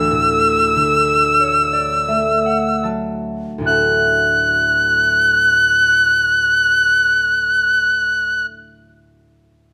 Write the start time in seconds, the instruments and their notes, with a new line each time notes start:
Already playing: harp D2, tin whistle E6
0.11 harp A2
0.76 harp D3
1.40 harp C#5
1.73 harp D5
2.08 harp A3 E5
2.46 harp F#5
2.83 harp F#3 A5
3.58 harp D2 A2
3.62 harp D4 F#4, tin whistle F#6
3.67 harp E5 A5